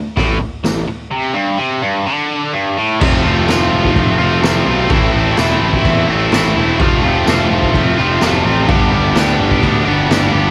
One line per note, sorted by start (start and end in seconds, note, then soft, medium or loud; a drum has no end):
0.16 0.39 A1 medium
0.16 0.39 A2 loud
0.16 kick loud
0.16 snare medium
0.16 open hi-hat soft
0.40 muted overdriven electric guitar stroke medium
0.40 muted picked electric bass stroke soft
0.64 0.86 A1 medium
0.64 0.83 A2 medium
0.64 snare loud
0.64 open hi-hat medium
0.64 tambourine medium
0.88 muted overdriven electric guitar stroke medium
0.88 muted picked electric bass stroke soft
1.11 1.35 C3 loud
1.33 1.58 G2 loud
1.58 1.82 C3 loud
1.82 2.06 G2 loud
2.06 2.53 D3 loud
2.53 2.77 G2 medium
2.77 3.00 A2 medium
3.00 3.21 F1 medium
3.00 3.48 F2 loud
3.00 3.49 C3 loud
3.00 3.26 F3 loud
3.00 3.26 A3 loud
3.00 3.25 C4 loud
3.00 kick loud
3.00 crash loud
3.00 crash medium
3.04 3.22 F4 loud
3.24 3.45 F1 medium
3.24 3.46 F3 medium
3.24 3.49 A3 medium
3.24 3.50 C4 medium
3.24 3.50 F4 medium
3.47 3.69 F1 medium
3.47 4.20 F3 medium
3.47 4.21 A3 medium
3.47 4.19 C4 medium
3.47 snare loud
3.47 tambourine medium
3.47 crash medium
3.51 4.17 F4 medium
3.73 3.92 F1 medium
3.84 kick medium
3.95 4.15 F1 loud
3.95 kick medium
3.95 crash medium
4.18 4.39 F1 medium
4.18 4.43 F3 medium
4.18 4.44 A3 medium
4.18 4.45 C4 medium
4.18 4.44 F4 medium
4.42 4.63 F1 medium
4.42 4.89 F2 medium
4.42 4.89 C3 medium
4.42 4.70 F3 medium
4.42 4.69 A3 loud
4.42 4.67 C4 medium
4.42 4.65 F4 loud
4.42 snare loud
4.42 tambourine loud
4.42 crash medium
4.66 4.86 B1 medium
4.66 4.92 A3 medium
4.66 4.93 C4 medium
4.66 4.89 F4 medium
4.71 4.91 F3 medium
4.90 5.10 A1 medium
4.90 5.38 A2 loud
4.90 5.35 E3 loud
4.90 5.17 A3 medium
4.90 5.16 C4 loud
4.90 kick loud
4.90 crash medium
4.94 5.12 E4 loud
5.13 5.34 A1 medium
5.13 5.38 A3 medium
5.13 5.39 C4 medium
5.13 5.39 E4 medium
5.37 5.58 E1 medium
5.37 6.32 E3 medium
5.37 6.10 A3 medium
5.37 6.09 C4 medium
5.37 snare loud
5.37 tambourine medium
5.37 crash medium
5.41 6.06 E4 medium
5.62 5.81 A1 medium
5.73 kick medium
5.85 6.04 E2 medium
5.85 kick medium
5.85 crash medium
6.08 6.28 A1 medium
6.08 6.33 A3 medium
6.08 6.33 C4 medium
6.08 6.34 E4 medium
6.32 6.52 A1 medium
6.32 6.78 A2 medium
6.32 6.79 E3 medium
6.32 6.59 A3 loud
6.32 6.57 C4 loud
6.32 snare loud
6.32 tambourine loud
6.32 crash medium
6.36 6.55 E4 loud
6.56 6.76 E1 loud
6.56 6.80 A3 medium
6.56 6.80 C4 medium
6.56 6.79 E4 medium
6.80 6.99 F1 loud
6.80 7.27 F2 loud
6.80 7.28 C3 medium
6.80 7.06 F3 loud
6.80 7.05 A3 loud
6.80 7.04 C4 medium
6.80 kick loud
6.80 crash medium
6.84 7.03 F4 loud
7.03 7.23 F1 loud
7.03 7.27 A3 medium
7.03 7.28 C4 medium
7.03 7.29 F4 medium
7.07 7.26 F3 medium
7.27 7.46 F1 loud
7.27 8.00 F3 medium
7.27 7.99 A3 medium
7.27 7.98 C4 medium
7.27 7.96 F4 medium
7.27 snare loud
7.27 tambourine medium
7.27 crash medium
7.51 7.70 F1 medium
7.62 kick medium
7.74 7.94 F1 medium
7.74 kick medium
7.74 crash medium
7.97 8.18 F1 medium
7.97 8.22 F3 medium
7.97 8.23 A3 medium
7.97 8.23 C4 medium
7.97 8.25 F4 medium
8.21 8.41 F1 medium
8.21 8.67 F2 medium
8.21 8.68 C3 medium
8.21 8.46 F3 loud
8.21 8.46 A3 medium
8.21 8.44 C4 loud
8.21 snare loud
8.21 tambourine loud
8.21 crash medium
8.26 8.43 F4 medium
8.44 8.64 A1 loud
8.44 8.69 F3 medium
8.44 8.69 A3 medium
8.44 8.68 C4 medium
8.44 8.67 F4 medium
8.68 8.88 G1 medium
8.68 9.16 G2 loud
8.68 9.16 D3 loud
8.68 8.93 G3 loud
8.68 8.93 B3 loud
8.68 8.91 D4 loud
8.68 8.90 G4 loud
8.68 kick loud
8.68 crash medium
8.91 9.12 G1 medium
8.91 9.13 G3 medium
8.91 9.16 B3 medium
8.91 9.17 D4 medium
8.91 9.18 G4 medium
9.15 9.35 D2 medium
9.15 9.88 G3 medium
9.15 9.87 B3 medium
9.15 9.86 D4 medium
9.15 snare loud
9.15 tambourine medium
9.15 crash medium
9.19 9.84 G4 medium
9.39 9.59 G1 medium
9.51 kick medium
9.63 9.83 D2 medium
9.63 kick medium
9.63 crash medium
9.85 10.06 G1 medium
9.85 10.11 B3 medium
9.85 10.12 D4 medium
9.85 10.12 G4 medium
9.89 10.10 G3 medium
10.09 10.29 G1 medium
10.09 10.51 G2 medium
10.09 10.51 D3 medium
10.09 10.35 G3 medium
10.09 10.34 B3 loud
10.09 10.33 D4 medium
10.09 snare loud
10.09 tambourine medium
10.09 crash medium
10.13 10.31 G4 loud
10.32 10.51 G1 medium
10.32 10.51 B3 medium
10.32 10.51 D4 medium
10.32 10.51 G4 medium
10.37 10.51 G3 medium